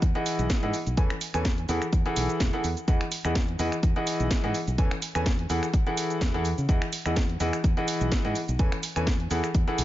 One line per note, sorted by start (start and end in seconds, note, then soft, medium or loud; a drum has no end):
0.02 0.12 E2 medium
0.02 kick loud
0.02 closed hi-hat loud
0.02 shaker soft
0.15 0.60 E3 medium
0.15 0.60 E4 medium
0.15 0.60 G#4 medium
0.15 0.60 D#5 medium
0.15 0.60 F#5 loud
0.15 closed hi-hat soft
0.26 open hi-hat loud
0.26 shaker medium
0.39 0.47 B1 loud
0.39 closed hi-hat soft
0.39 shaker soft
0.50 kick loud
0.50 snare loud
0.50 closed hi-hat loud
0.50 shaker soft
0.63 0.71 G#2 medium
0.63 0.74 E3 medium
0.63 0.74 E4 medium
0.63 0.74 G#4 medium
0.63 0.74 D#5 medium
0.63 0.74 F#5 loud
0.63 closed hi-hat soft
0.74 open hi-hat medium
0.74 shaker medium
0.87 0.94 B1 medium
0.87 closed hi-hat soft
0.87 shaker soft
0.97 1.11 E3 medium
0.97 1.11 C#4 medium
0.97 1.11 A4 medium
0.97 1.11 B4 medium
0.97 1.11 G#5 medium
0.97 kick loud
0.97 closed hi-hat medium
0.97 shaker soft
1.10 finger snap medium
1.10 closed hi-hat soft
1.21 open hi-hat loud
1.21 shaker medium
1.34 1.64 E2 medium
1.34 1.45 E3 medium
1.34 1.45 C#4 medium
1.34 1.45 A4 medium
1.34 1.45 B4 medium
1.34 1.45 G#5 medium
1.34 finger snap medium
1.34 closed hi-hat soft
1.34 shaker soft
1.45 kick loud
1.45 snare loud
1.45 closed hi-hat loud
1.45 shaker soft
1.58 closed hi-hat soft
1.69 1.78 E2 loud
1.69 1.82 E3 medium
1.69 1.82 E4 medium
1.69 1.82 G#4 medium
1.69 1.82 A4 medium
1.69 1.82 F#5 loud
1.69 open hi-hat medium
1.69 shaker medium
1.82 finger snap medium
1.82 closed hi-hat soft
1.82 shaker soft
1.93 2.02 E2 loud
1.93 kick loud
1.93 closed hi-hat medium
1.93 shaker soft
2.06 2.50 E3 medium
2.06 2.50 E4 medium
2.06 2.50 G#4 medium
2.06 2.50 A4 medium
2.06 2.50 F#5 loud
2.06 closed hi-hat soft
2.16 2.26 B1 loud
2.16 open hi-hat loud
2.16 shaker medium
2.29 closed hi-hat soft
2.29 shaker soft
2.40 2.50 E1 medium
2.40 kick loud
2.40 snare loud
2.40 closed hi-hat medium
2.40 shaker soft
2.53 2.64 E3 medium
2.53 2.64 E4 medium
2.53 2.64 G#4 medium
2.53 2.64 A4 medium
2.53 2.64 F#5 loud
2.53 closed hi-hat soft
2.64 2.74 E2 medium
2.64 open hi-hat medium
2.64 shaker medium
2.77 closed hi-hat soft
2.77 shaker soft
2.88 2.97 E2 loud
2.88 3.01 E3 medium
2.88 3.01 E4 medium
2.88 3.01 G#4 medium
2.88 3.01 D#5 medium
2.88 3.01 F#5 medium
2.88 kick loud
2.88 closed hi-hat medium
2.88 shaker soft
3.01 finger snap medium
3.01 closed hi-hat soft
3.12 open hi-hat loud
3.12 shaker medium
3.25 3.55 E2 medium
3.25 3.36 E3 medium
3.25 3.36 E4 medium
3.25 3.36 G#4 medium
3.25 3.36 D#5 medium
3.25 3.36 F#5 medium
3.25 finger snap medium
3.25 closed hi-hat soft
3.25 shaker soft
3.35 kick loud
3.35 snare loud
3.35 closed hi-hat medium
3.35 shaker soft
3.48 closed hi-hat soft
3.59 3.69 E2 loud
3.59 3.73 E3 medium
3.59 3.73 E4 medium
3.59 3.73 G#4 medium
3.59 3.73 D#5 medium
3.59 3.73 F#5 loud
3.59 open hi-hat medium
3.59 shaker medium
3.72 finger snap medium
3.72 closed hi-hat soft
3.72 shaker soft
3.83 3.93 E2 loud
3.83 kick loud
3.83 closed hi-hat medium
3.83 shaker soft
3.96 4.41 E3 medium
3.96 4.41 E4 medium
3.96 4.41 G#4 medium
3.96 4.41 D#5 medium
3.96 4.41 F#5 loud
3.96 closed hi-hat soft
4.07 open hi-hat loud
4.07 shaker medium
4.20 4.28 B1 loud
4.20 closed hi-hat soft
4.20 shaker soft
4.31 kick loud
4.31 snare loud
4.31 closed hi-hat medium
4.31 shaker soft
4.44 4.52 G#2 medium
4.44 4.55 E3 medium
4.44 4.55 E4 medium
4.44 4.55 G#4 medium
4.44 4.55 D#5 medium
4.44 4.55 F#5 loud
4.44 closed hi-hat soft
4.54 open hi-hat loud
4.54 shaker medium
4.68 4.75 B1 medium
4.68 closed hi-hat soft
4.68 shaker soft
4.78 4.88 E2 loud
4.78 4.92 E3 medium
4.78 4.92 C#4 medium
4.78 4.92 A4 medium
4.78 4.92 B4 medium
4.78 4.92 G#5 medium
4.78 kick loud
4.78 closed hi-hat medium
4.78 shaker soft
4.91 finger snap medium
4.91 closed hi-hat soft
5.02 open hi-hat loud
5.02 shaker medium
5.15 5.45 E2 medium
5.15 5.26 E3 medium
5.15 5.26 C#4 medium
5.15 5.26 A4 medium
5.15 5.26 B4 medium
5.15 5.26 G#5 medium
5.15 finger snap medium
5.15 closed hi-hat soft
5.15 shaker soft
5.26 kick loud
5.26 snare loud
5.26 closed hi-hat medium
5.26 shaker soft
5.39 closed hi-hat soft
5.50 5.59 E2 loud
5.50 5.63 E3 medium
5.50 5.63 E4 medium
5.50 5.63 G#4 medium
5.50 5.63 A4 medium
5.50 5.63 F#5 loud
5.50 open hi-hat medium
5.50 shaker medium
5.63 finger snap medium
5.63 closed hi-hat soft
5.63 shaker soft
5.74 kick loud
5.74 closed hi-hat medium
5.74 shaker soft
5.87 6.31 E3 medium
5.87 6.31 E4 medium
5.87 6.31 G#4 medium
5.87 6.31 A4 medium
5.87 6.31 F#5 loud
5.87 closed hi-hat soft
5.97 open hi-hat loud
5.97 shaker medium
6.10 closed hi-hat soft
6.10 shaker soft
6.21 6.52 E2 loud
6.21 kick loud
6.21 snare loud
6.21 closed hi-hat medium
6.21 shaker soft
6.34 6.45 E3 medium
6.34 6.45 E4 medium
6.34 6.45 G#4 medium
6.34 6.45 A4 medium
6.34 6.45 F#5 loud
6.34 closed hi-hat soft
6.45 open hi-hat medium
6.45 shaker medium
6.58 6.66 C#3 medium
6.58 closed hi-hat soft
6.58 shaker soft
6.69 6.78 E2 loud
6.69 6.82 E3 medium
6.69 6.82 E4 medium
6.69 6.82 G#4 medium
6.69 6.82 D#5 medium
6.69 6.82 F#5 medium
6.69 kick loud
6.69 closed hi-hat medium
6.69 shaker soft
6.82 finger snap medium
6.82 closed hi-hat soft
6.93 open hi-hat loud
6.93 shaker medium
7.06 7.36 E2 medium
7.06 7.17 E3 medium
7.06 7.17 E4 medium
7.06 7.17 G#4 medium
7.06 7.17 D#5 medium
7.06 7.17 F#5 medium
7.06 finger snap medium
7.06 closed hi-hat soft
7.06 shaker soft
7.16 kick loud
7.16 snare loud
7.16 closed hi-hat medium
7.16 shaker soft
7.29 closed hi-hat soft
7.40 7.50 E2 loud
7.40 7.54 E3 medium
7.40 7.54 E4 medium
7.40 7.54 G#4 medium
7.40 7.54 D#5 medium
7.40 7.54 F#5 loud
7.40 open hi-hat medium
7.40 shaker medium
7.53 finger snap medium
7.53 closed hi-hat soft
7.53 shaker soft
7.64 7.74 E2 medium
7.64 kick loud
7.64 closed hi-hat medium
7.64 shaker soft
7.77 8.22 E3 medium
7.77 8.22 E4 medium
7.77 8.22 G#4 medium
7.77 8.22 D#5 medium
7.77 8.22 F#5 loud
7.77 closed hi-hat soft
7.88 open hi-hat loud
7.88 shaker medium
8.01 8.09 B1 loud
8.01 shaker soft
8.12 kick loud
8.12 snare loud
8.12 closed hi-hat medium
8.12 shaker soft
8.25 8.33 G#2 medium
8.25 8.36 E3 medium
8.25 8.36 E4 medium
8.25 8.36 G#4 medium
8.25 8.36 D#5 medium
8.25 8.36 F#5 loud
8.25 closed hi-hat soft
8.35 open hi-hat medium
8.35 shaker medium
8.48 8.56 B1 medium
8.48 closed hi-hat soft
8.48 shaker soft
8.59 8.69 E2 loud
8.59 8.73 E3 medium
8.59 8.73 C#4 medium
8.59 8.73 A4 medium
8.59 8.73 B4 medium
8.59 8.73 G#5 medium
8.59 kick loud
8.59 closed hi-hat medium
8.59 shaker soft
8.72 finger snap medium
8.72 closed hi-hat soft
8.83 open hi-hat loud
8.83 shaker medium
8.96 9.26 E2 medium
8.96 9.07 E3 medium
8.96 9.07 C#4 medium
8.96 9.07 A4 medium
8.96 9.07 B4 medium
8.96 9.07 G#5 medium
8.96 finger snap medium
8.96 closed hi-hat soft
8.96 shaker soft
9.07 kick loud
9.07 snare loud
9.07 closed hi-hat medium
9.07 shaker soft
9.20 closed hi-hat soft
9.31 9.40 E2 loud
9.31 9.44 E3 medium
9.31 9.44 E4 medium
9.31 9.44 G#4 medium
9.31 9.44 A4 medium
9.31 9.44 F#5 loud
9.31 open hi-hat medium
9.31 shaker medium
9.44 finger snap medium
9.44 closed hi-hat soft
9.44 shaker soft
9.55 9.64 E2 loud
9.55 kick loud
9.55 closed hi-hat medium
9.55 shaker soft
9.68 9.84 E3 medium
9.68 9.84 E4 medium
9.68 9.84 G#4 medium
9.68 9.84 A4 medium
9.68 9.84 F#5 loud
9.68 closed hi-hat soft
9.78 9.84 B1 loud
9.78 open hi-hat loud
9.78 shaker medium